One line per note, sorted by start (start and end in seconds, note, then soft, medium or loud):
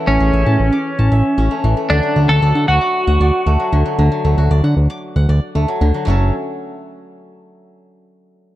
0.00 1.63 E3 medium
0.00 0.26 A3 medium
0.00 0.33 E5 medium
0.00 0.26 A5 medium
0.07 0.18 A1 loud
0.07 0.78 C#4 medium
0.07 1.60 C#4 medium
0.20 0.32 A1 loud
0.20 0.52 G#4 medium
0.33 0.45 A1 loud
0.33 1.11 E5 medium
0.46 0.58 A2 medium
0.46 0.98 A5 medium
0.60 0.71 A1 loud
0.72 1.44 D6 medium
0.99 1.10 A1 loud
0.99 2.44 A5 medium
1.12 1.23 A1 loud
1.12 2.84 E5 medium
1.38 1.49 A1 loud
1.38 1.96 C#4 medium
1.51 1.76 A3 medium
1.64 1.75 A1 loud
1.64 1.95 E3 medium
1.77 2.16 A3 medium
1.90 2.01 D2 loud
1.90 3.71 D3 loud
1.90 2.30 D4 loud
2.03 3.58 F#3 medium
2.16 2.27 D2 loud
2.16 3.46 A3 medium
2.29 2.40 D2 loud
2.29 4.37 F#4 medium
2.29 2.68 A4 loud
2.42 2.53 D2 loud
2.42 3.20 D5 medium
2.55 2.66 D3 medium
2.55 3.07 F#5 medium
2.68 2.79 D2 loud
2.68 5.51 F#4 medium
2.81 4.03 D6 medium
3.07 3.19 D2 medium
3.07 4.63 F#5 medium
3.20 3.31 D2 loud
3.20 4.50 D5 medium
3.46 3.58 D2 loud
3.46 4.24 A3 medium
3.60 3.78 F#3 medium
3.72 3.84 D2 loud
3.72 3.97 D3 medium
3.85 4.04 F#3 medium
3.99 4.10 D2 loud
3.99 5.80 D3 medium
4.12 5.67 F#3 medium
4.25 4.36 D2 loud
4.25 4.35 A3 medium
4.38 4.49 D2 loud
4.38 4.49 F#4 medium
4.51 4.62 D2 loud
4.51 4.62 D5 medium
4.64 4.75 D3 medium
4.64 4.75 F#5 medium
4.77 4.88 D2 loud
4.90 5.01 D6 medium
5.16 5.27 D2 loud
5.16 5.27 F#5 medium
5.29 5.40 D2 loud
5.29 5.40 D5 medium
5.55 5.66 D2 loud
5.55 5.66 A3 medium
5.68 5.86 F#3 medium
5.81 5.92 D2 loud
5.81 6.12 D3 medium
5.94 6.05 F#3 medium
6.05 6.32 F#1 loud
6.05 6.32 F#3 medium
6.05 6.32 A3 medium
6.05 6.32 C#4 medium
6.10 6.32 A4 medium